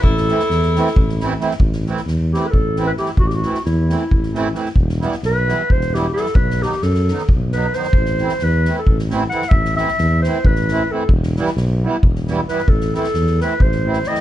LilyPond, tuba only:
\new Staff \with { instrumentName = "Tuba" } { \clef bass \time 7/8 \tempo 4 = 133 a,,4 e,4 a,,4. | a,,4 e,4 a,,4. | a,,4 e,4 a,,4. | e,,4 b,,4 e,,4. |
b,,4 fis,4 b,,4. | a,,4 e,4 a,,4. | a,,4 e,4 a,,4. | e,,4 b,,4 e,,4. |
a,,4 e,4 a,,4. | }